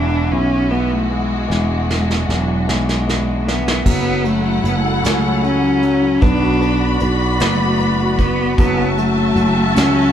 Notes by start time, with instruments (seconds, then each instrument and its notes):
Already playing: fretless electric bass E1, grand piano E3, string section G#3 E4 F#4, cello D4
0.31 fretless electric bass B1, grand piano E3, cello C#4
0.71 grand piano E3, cello B3
0.91 cello A3
1.10 grand piano E3, cello G#3
1.48 fretless electric bass E1, grand piano E3, string section D4, snare
1.88 grand piano E3, snare
2.11 snare
2.28 fretless electric bass E1, grand piano E3, cello F#3, snare
2.67 fretless electric bass B1, grand piano E3, cello G#3, snare
2.89 snare
3.07 grand piano E3, snare
3.47 grand piano E3, cello B3, snare
3.68 snare
3.86 fretless electric bass F#1, grand piano F#3, cello B3, string section E4 A4 F#5, kick, crash
4.06 grand piano F#3
4.25 grand piano F#3, cello A3, closed hi-hat
4.44 grand piano F#3
4.64 fretless electric bass F#1, grand piano F#3, cello B3, closed hi-hat
4.76 cello A3
4.85 grand piano F#3, cello G#3
4.94 cello A3
5.03 fretless electric bass C#2, cello A3, grand piano C#4, snare, closed hi-hat
5.23 grand piano F#3
5.43 grand piano F#3, cello C#4, closed hi-hat
5.62 grand piano F#3
5.83 grand piano F#3, closed hi-hat
6.03 grand piano F#3
6.21 fretless electric bass B1, grand piano B3, cello D4, string section F#4 D5 B5, kick, closed hi-hat
6.42 grand piano F#4
6.62 grand piano B3, closed hi-hat
6.81 grand piano F#4
7.00 fretless electric bass B1, grand piano B3, closed hi-hat
7.21 grand piano F#4
7.40 fretless electric bass F#1, cello A3, grand piano B3, snare, closed hi-hat
7.61 grand piano F#4
7.80 grand piano B3, closed hi-hat
8.00 grand piano F#4
8.19 grand piano B3, cello B3, kick, closed hi-hat
8.40 grand piano F#4
8.56 fretless electric bass F#1, grand piano F#3, cello B3, string section F#4 E5 A5, kick, closed hi-hat
8.79 grand piano F#3
8.96 grand piano F#3, cello A3, closed hi-hat
9.18 grand piano F#3
9.36 fretless electric bass F#1, grand piano F#3, closed hi-hat
9.55 grand piano F#3
9.75 fretless electric bass C#2, grand piano C#4, cello C#4, snare, closed hi-hat
9.96 grand piano F#3